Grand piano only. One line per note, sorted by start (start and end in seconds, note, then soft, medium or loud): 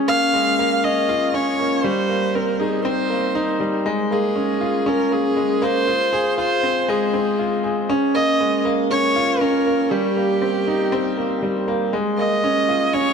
0.00 0.84 C#4 medium
0.08 0.32 A#3 medium
0.34 0.57 G#3 medium
0.59 0.83 A#3 loud
0.84 1.08 C#4 medium
1.09 1.33 F4 loud
1.34 1.58 C#4 loud
1.59 1.74 A#3 medium
1.84 2.08 G3 loud
2.09 2.33 A#3 medium
2.35 2.49 C4 medium
2.60 2.84 D#4 medium
2.85 3.09 C4 loud
3.10 3.34 A#3 medium
3.35 3.59 D#4 loud
3.60 3.84 G3 medium
3.86 4.10 G#3 loud
4.11 4.35 A#3 medium
4.36 4.50 C#4 medium
4.61 4.85 F4 medium
4.86 5.10 C#4 loud
5.11 5.36 A#3 medium
5.37 5.61 G#3 medium
5.62 5.86 A#3 loud
5.87 6.11 F4 medium
6.13 6.37 G#4 loud
6.38 6.62 F4 loud
6.63 6.78 C4 medium
6.88 7.12 G#3 loud
7.13 7.38 C4 medium
7.39 7.53 F4 medium
7.64 7.88 G#4 medium
7.89 8.13 C#4 loud
8.15 8.39 A#3 medium
8.40 8.64 G#3 medium
8.65 8.89 A#3 loud
8.90 9.14 C#4 medium
9.16 9.40 F4 loud
9.41 9.65 C#4 loud
9.66 9.80 A#3 medium
9.91 10.15 G3 loud
10.16 10.40 A#3 medium
10.42 10.56 C4 medium
10.67 10.91 D#4 medium
10.92 11.16 C4 medium
11.18 11.41 A#3 medium
11.42 11.66 G3 medium
11.68 11.92 A#3 medium
11.93 12.17 G#3 loud
12.18 12.42 A#3 medium
12.44 12.58 C#4 medium
12.69 12.92 F4 medium
12.94 13.13 C#4 loud